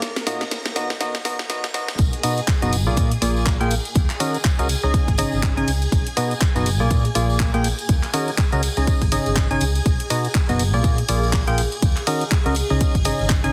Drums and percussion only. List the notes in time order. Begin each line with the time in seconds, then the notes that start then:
0.02 snare, closed hi-hat
0.16 snare, closed hi-hat
0.27 snare, open hi-hat
0.41 snare, closed hi-hat
0.51 snare, closed hi-hat
0.66 snare, closed hi-hat
0.76 snare, open hi-hat
0.90 snare
1.01 snare, closed hi-hat
1.15 snare, closed hi-hat
1.25 snare, open hi-hat
1.39 snare
1.50 snare, closed hi-hat
1.64 snare, closed hi-hat
1.74 snare, open hi-hat
1.88 snare, closed hi-hat
1.98 kick, closed hi-hat, tambourine
2.13 closed hi-hat
2.23 open hi-hat, tambourine
2.37 closed hi-hat, tambourine
2.48 kick, clap, closed hi-hat
2.62 closed hi-hat, tambourine
2.72 open hi-hat, tambourine
2.87 tambourine
2.97 kick, closed hi-hat, tambourine
3.12 closed hi-hat
3.22 open hi-hat, tambourine
3.36 tambourine
3.45 kick, clap, closed hi-hat, tambourine
3.61 closed hi-hat
3.71 open hi-hat, tambourine
3.85 closed hi-hat, tambourine
3.95 kick, closed hi-hat, tambourine
4.10 clap, closed hi-hat
4.20 open hi-hat, tambourine
4.34 closed hi-hat, tambourine
4.45 kick, clap, closed hi-hat, tambourine
4.59 closed hi-hat, tambourine
4.69 open hi-hat, tambourine
4.82 tambourine
4.94 kick, closed hi-hat, tambourine
5.08 kick, closed hi-hat
5.18 open hi-hat, tambourine
5.32 tambourine
5.43 kick, clap, closed hi-hat
5.57 closed hi-hat
5.67 open hi-hat, tambourine
5.82 closed hi-hat, tambourine
5.92 kick, closed hi-hat, tambourine
6.07 closed hi-hat
6.17 open hi-hat, tambourine
6.31 closed hi-hat, tambourine
6.41 kick, clap, closed hi-hat, tambourine
6.55 closed hi-hat, tambourine
6.66 open hi-hat, tambourine
6.81 tambourine
6.90 kick, closed hi-hat, tambourine
7.05 closed hi-hat
7.15 open hi-hat, tambourine
7.30 tambourine
7.40 kick, clap, closed hi-hat
7.54 closed hi-hat
7.64 open hi-hat, tambourine
7.78 closed hi-hat, tambourine
7.89 kick, closed hi-hat, tambourine
8.03 clap, closed hi-hat
8.13 open hi-hat, tambourine
8.28 closed hi-hat, tambourine
8.38 kick, clap, closed hi-hat, tambourine
8.52 closed hi-hat, tambourine
8.63 open hi-hat, tambourine
8.77 closed hi-hat, tambourine
8.87 kick, closed hi-hat, tambourine
9.02 kick, closed hi-hat
9.12 open hi-hat, tambourine
9.26 closed hi-hat, tambourine
9.36 kick, clap, closed hi-hat, tambourine
9.51 closed hi-hat
9.60 open hi-hat, tambourine
9.75 closed hi-hat, tambourine
9.86 kick, closed hi-hat, tambourine
10.00 closed hi-hat
10.10 open hi-hat, tambourine
10.25 closed hi-hat, tambourine
10.35 kick, clap, closed hi-hat, tambourine
10.49 closed hi-hat, tambourine
10.59 open hi-hat, tambourine
10.73 tambourine
10.84 kick, closed hi-hat, tambourine
10.98 closed hi-hat
11.08 open hi-hat, tambourine
11.23 tambourine
11.32 kick, clap, closed hi-hat, tambourine
11.47 closed hi-hat
11.58 open hi-hat, tambourine
11.71 closed hi-hat, tambourine
11.82 kick, closed hi-hat, tambourine
11.96 clap, closed hi-hat
12.07 open hi-hat, tambourine
12.20 closed hi-hat, tambourine
12.31 kick, clap, closed hi-hat, tambourine
12.46 closed hi-hat, tambourine
12.55 open hi-hat, tambourine
12.70 tambourine
12.80 kick, closed hi-hat, tambourine
12.95 kick, closed hi-hat
13.05 open hi-hat, tambourine
13.19 tambourine
13.30 kick, clap, closed hi-hat, tambourine
13.44 closed hi-hat